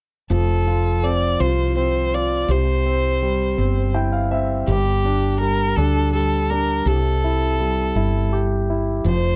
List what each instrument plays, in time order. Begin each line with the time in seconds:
0.30 fretless electric bass F1, grand piano F3, violin A4
0.67 grand piano F4
1.03 grand piano C4, violin D5
1.40 fretless electric bass C2, grand piano F4, violin C5
1.77 grand piano C4, violin C5
2.14 grand piano F4, violin D5
2.48 fretless electric bass C2, grand piano C3, violin C5
2.86 grand piano C4
3.22 grand piano G3
3.58 fretless electric bass G1, grand piano C4
3.94 grand piano E4 G5
4.12 grand piano F5
4.31 grand piano C4 E5
4.67 fretless electric bass G1, grand piano G3, violin G4
5.05 grand piano D4
5.40 grand piano G3, violin A#4
5.76 fretless electric bass D2, grand piano D4, violin A4
6.12 grand piano G3, violin A4
6.50 grand piano D4, violin A#4
6.86 fretless electric bass C2, grand piano C3, violin A4
7.24 grand piano E4
7.60 grand piano G3
7.95 fretless electric bass G1, grand piano E4
8.33 grand piano G4
8.70 grand piano E4
9.04 fretless electric bass F1, grand piano F3, violin C5